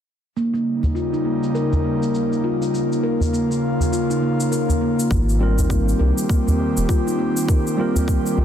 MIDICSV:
0, 0, Header, 1, 7, 480
1, 0, Start_track
1, 0, Tempo, 594059
1, 289, Time_signature, 4, 2, 24, 8
1, 6826, End_track
2, 0, Start_track
2, 0, Title_t, "Tine electric piano"
2, 0, Program_c, 0, 4
2, 4356, Note_on_c, 0, 55, 71
2, 4365, Note_on_c, 0, 60, 70
2, 4375, Note_on_c, 0, 65, 68
2, 4386, Note_on_c, 0, 70, 78
2, 6031, Note_off_c, 0, 55, 0
2, 6036, Note_off_c, 0, 60, 0
2, 6041, Note_off_c, 0, 65, 0
2, 6046, Note_off_c, 0, 70, 0
2, 6276, Note_on_c, 0, 55, 71
2, 6288, Note_on_c, 0, 60, 64
2, 6300, Note_on_c, 0, 65, 70
2, 6310, Note_on_c, 0, 70, 80
2, 6826, Note_off_c, 0, 55, 0
2, 6826, Note_off_c, 0, 60, 0
2, 6826, Note_off_c, 0, 65, 0
2, 6826, Note_off_c, 0, 70, 0
2, 6826, End_track
3, 0, Start_track
3, 0, Title_t, "Analog synth pad"
3, 0, Program_c, 1, 89
3, 289, Note_on_c, 1, 49, 74
3, 290, Note_on_c, 1, 58, 64
3, 291, Note_on_c, 1, 55, 66
3, 291, Note_on_c, 1, 63, 79
3, 2190, Note_off_c, 1, 49, 0
3, 2191, Note_off_c, 1, 55, 0
3, 2191, Note_off_c, 1, 63, 0
3, 2210, Note_on_c, 1, 49, 73
3, 2213, Note_on_c, 1, 65, 76
3, 4097, Note_off_c, 1, 58, 0
3, 4111, Note_off_c, 1, 49, 0
3, 4112, Note_off_c, 1, 65, 0
3, 4135, Note_on_c, 1, 67, 81
3, 4137, Note_on_c, 1, 60, 72
3, 4138, Note_on_c, 1, 51, 70
3, 6041, Note_on_c, 1, 58, 66
3, 6826, Note_off_c, 1, 51, 0
3, 6826, Note_off_c, 1, 58, 0
3, 6826, Note_off_c, 1, 60, 0
3, 6826, Note_off_c, 1, 67, 0
3, 6826, End_track
4, 0, Start_track
4, 0, Title_t, "Steel tongue drum"
4, 0, Program_c, 2, 114
4, 295, Note_on_c, 2, 58, 67
4, 374, Note_off_c, 2, 58, 0
4, 433, Note_on_c, 2, 58, 64
4, 760, Note_off_c, 2, 58, 0
4, 768, Note_on_c, 2, 65, 67
4, 897, Note_off_c, 2, 65, 0
4, 912, Note_on_c, 2, 63, 63
4, 999, Note_off_c, 2, 63, 0
4, 1010, Note_on_c, 2, 58, 63
4, 1145, Note_off_c, 2, 58, 0
4, 1250, Note_on_c, 2, 70, 70
4, 1385, Note_off_c, 2, 70, 0
4, 1489, Note_on_c, 2, 58, 65
4, 1570, Note_off_c, 2, 58, 0
4, 1633, Note_on_c, 2, 58, 67
4, 1960, Note_off_c, 2, 58, 0
4, 1970, Note_on_c, 2, 65, 68
4, 2098, Note_off_c, 2, 65, 0
4, 2115, Note_on_c, 2, 63, 62
4, 2201, Note_off_c, 2, 63, 0
4, 2213, Note_on_c, 2, 58, 73
4, 2347, Note_off_c, 2, 58, 0
4, 2452, Note_on_c, 2, 70, 66
4, 2586, Note_off_c, 2, 70, 0
4, 2694, Note_on_c, 2, 58, 75
4, 2773, Note_off_c, 2, 58, 0
4, 2836, Note_on_c, 2, 58, 65
4, 3161, Note_off_c, 2, 58, 0
4, 3171, Note_on_c, 2, 65, 68
4, 3298, Note_off_c, 2, 65, 0
4, 3313, Note_on_c, 2, 63, 71
4, 3400, Note_off_c, 2, 63, 0
4, 3412, Note_on_c, 2, 58, 69
4, 3546, Note_off_c, 2, 58, 0
4, 3649, Note_on_c, 2, 70, 74
4, 3785, Note_off_c, 2, 70, 0
4, 3889, Note_on_c, 2, 58, 66
4, 3970, Note_off_c, 2, 58, 0
4, 4032, Note_on_c, 2, 58, 64
4, 4129, Note_off_c, 2, 58, 0
4, 4365, Note_on_c, 2, 65, 70
4, 4496, Note_off_c, 2, 65, 0
4, 4505, Note_on_c, 2, 63, 68
4, 4596, Note_off_c, 2, 63, 0
4, 4603, Note_on_c, 2, 58, 70
4, 4742, Note_off_c, 2, 58, 0
4, 4842, Note_on_c, 2, 70, 67
4, 4981, Note_off_c, 2, 70, 0
4, 5085, Note_on_c, 2, 58, 80
4, 5168, Note_off_c, 2, 58, 0
4, 5228, Note_on_c, 2, 58, 71
4, 5557, Note_off_c, 2, 58, 0
4, 5567, Note_on_c, 2, 65, 72
4, 5696, Note_off_c, 2, 65, 0
4, 5713, Note_on_c, 2, 63, 73
4, 5800, Note_off_c, 2, 63, 0
4, 5806, Note_on_c, 2, 58, 72
4, 5943, Note_off_c, 2, 58, 0
4, 6049, Note_on_c, 2, 70, 71
4, 6185, Note_off_c, 2, 70, 0
4, 6288, Note_on_c, 2, 58, 71
4, 6370, Note_off_c, 2, 58, 0
4, 6430, Note_on_c, 2, 58, 62
4, 6759, Note_off_c, 2, 58, 0
4, 6769, Note_on_c, 2, 65, 64
4, 6826, Note_off_c, 2, 65, 0
4, 6826, End_track
5, 0, Start_track
5, 0, Title_t, "Sub bass"
5, 0, Program_c, 3, 38
5, 4128, Note_on_c, 3, 32, 92
5, 4798, Note_off_c, 3, 32, 0
5, 4846, Note_on_c, 3, 36, 85
5, 4944, Note_off_c, 3, 36, 0
5, 5472, Note_on_c, 3, 27, 85
5, 5537, Note_off_c, 3, 27, 0
5, 6767, Note_on_c, 3, 36, 81
5, 6826, Note_off_c, 3, 36, 0
5, 6826, End_track
6, 0, Start_track
6, 0, Title_t, "Udu"
6, 671, Note_on_c, 9, 64, 78
6, 752, Note_off_c, 9, 64, 0
6, 1394, Note_on_c, 9, 64, 68
6, 1475, Note_off_c, 9, 64, 0
6, 2589, Note_on_c, 9, 64, 73
6, 2670, Note_off_c, 9, 64, 0
6, 3068, Note_on_c, 9, 64, 74
6, 3149, Note_off_c, 9, 64, 0
6, 3788, Note_on_c, 9, 64, 83
6, 3869, Note_off_c, 9, 64, 0
6, 4513, Note_on_c, 9, 64, 90
6, 4594, Note_off_c, 9, 64, 0
6, 5232, Note_on_c, 9, 64, 81
6, 5312, Note_off_c, 9, 64, 0
6, 6428, Note_on_c, 9, 64, 77
6, 6508, Note_off_c, 9, 64, 0
6, 6826, End_track
7, 0, Start_track
7, 0, Title_t, "Drums"
7, 297, Note_on_c, 9, 82, 48
7, 378, Note_off_c, 9, 82, 0
7, 440, Note_on_c, 9, 82, 28
7, 521, Note_off_c, 9, 82, 0
7, 678, Note_on_c, 9, 82, 57
7, 759, Note_off_c, 9, 82, 0
7, 776, Note_on_c, 9, 82, 49
7, 857, Note_off_c, 9, 82, 0
7, 918, Note_on_c, 9, 82, 30
7, 998, Note_off_c, 9, 82, 0
7, 1158, Note_on_c, 9, 82, 59
7, 1239, Note_off_c, 9, 82, 0
7, 1253, Note_on_c, 9, 82, 51
7, 1334, Note_off_c, 9, 82, 0
7, 1396, Note_on_c, 9, 82, 29
7, 1477, Note_off_c, 9, 82, 0
7, 1637, Note_on_c, 9, 82, 60
7, 1718, Note_off_c, 9, 82, 0
7, 1733, Note_on_c, 9, 82, 50
7, 1814, Note_off_c, 9, 82, 0
7, 1879, Note_on_c, 9, 82, 27
7, 1960, Note_off_c, 9, 82, 0
7, 2118, Note_on_c, 9, 82, 59
7, 2199, Note_off_c, 9, 82, 0
7, 2219, Note_on_c, 9, 82, 50
7, 2299, Note_off_c, 9, 82, 0
7, 2362, Note_on_c, 9, 82, 28
7, 2443, Note_off_c, 9, 82, 0
7, 2602, Note_on_c, 9, 82, 63
7, 2683, Note_off_c, 9, 82, 0
7, 2699, Note_on_c, 9, 82, 49
7, 2780, Note_off_c, 9, 82, 0
7, 2841, Note_on_c, 9, 82, 32
7, 2922, Note_off_c, 9, 82, 0
7, 3082, Note_on_c, 9, 82, 60
7, 3163, Note_off_c, 9, 82, 0
7, 3176, Note_on_c, 9, 82, 50
7, 3256, Note_off_c, 9, 82, 0
7, 3318, Note_on_c, 9, 82, 32
7, 3399, Note_off_c, 9, 82, 0
7, 3558, Note_on_c, 9, 82, 64
7, 3639, Note_off_c, 9, 82, 0
7, 3655, Note_on_c, 9, 82, 52
7, 3736, Note_off_c, 9, 82, 0
7, 3797, Note_on_c, 9, 82, 31
7, 3878, Note_off_c, 9, 82, 0
7, 4036, Note_on_c, 9, 82, 64
7, 4117, Note_off_c, 9, 82, 0
7, 4126, Note_on_c, 9, 36, 97
7, 4136, Note_on_c, 9, 82, 53
7, 4207, Note_off_c, 9, 36, 0
7, 4216, Note_off_c, 9, 82, 0
7, 4275, Note_on_c, 9, 82, 30
7, 4356, Note_off_c, 9, 82, 0
7, 4513, Note_on_c, 9, 82, 62
7, 4594, Note_off_c, 9, 82, 0
7, 4605, Note_on_c, 9, 36, 99
7, 4610, Note_on_c, 9, 82, 53
7, 4686, Note_off_c, 9, 36, 0
7, 4691, Note_off_c, 9, 82, 0
7, 4755, Note_on_c, 9, 82, 31
7, 4836, Note_off_c, 9, 82, 0
7, 4993, Note_on_c, 9, 82, 58
7, 5074, Note_off_c, 9, 82, 0
7, 5086, Note_on_c, 9, 36, 105
7, 5092, Note_on_c, 9, 82, 51
7, 5167, Note_off_c, 9, 36, 0
7, 5173, Note_off_c, 9, 82, 0
7, 5236, Note_on_c, 9, 82, 30
7, 5317, Note_off_c, 9, 82, 0
7, 5472, Note_on_c, 9, 82, 62
7, 5553, Note_off_c, 9, 82, 0
7, 5566, Note_on_c, 9, 36, 100
7, 5573, Note_on_c, 9, 82, 54
7, 5647, Note_off_c, 9, 36, 0
7, 5654, Note_off_c, 9, 82, 0
7, 5717, Note_on_c, 9, 82, 31
7, 5798, Note_off_c, 9, 82, 0
7, 5954, Note_on_c, 9, 82, 70
7, 6034, Note_off_c, 9, 82, 0
7, 6047, Note_on_c, 9, 36, 103
7, 6052, Note_on_c, 9, 82, 54
7, 6128, Note_off_c, 9, 36, 0
7, 6133, Note_off_c, 9, 82, 0
7, 6197, Note_on_c, 9, 82, 29
7, 6278, Note_off_c, 9, 82, 0
7, 6435, Note_on_c, 9, 82, 61
7, 6516, Note_off_c, 9, 82, 0
7, 6527, Note_on_c, 9, 36, 97
7, 6534, Note_on_c, 9, 82, 52
7, 6608, Note_off_c, 9, 36, 0
7, 6615, Note_off_c, 9, 82, 0
7, 6675, Note_on_c, 9, 82, 33
7, 6756, Note_off_c, 9, 82, 0
7, 6826, End_track
0, 0, End_of_file